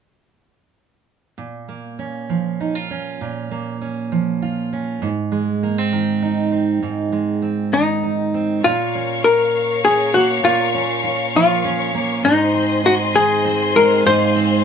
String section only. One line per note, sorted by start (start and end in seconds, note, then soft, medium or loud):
8.64 12.21 A#4 medium
8.64 12.21 C#5 soft
8.64 12.21 F5 soft
8.64 12.21 C#6 medium
12.23 14.64 G#4 medium
12.23 14.64 C5 soft
12.23 14.03 D#5 soft
12.23 14.64 C6 medium
14.02 14.64 F5 soft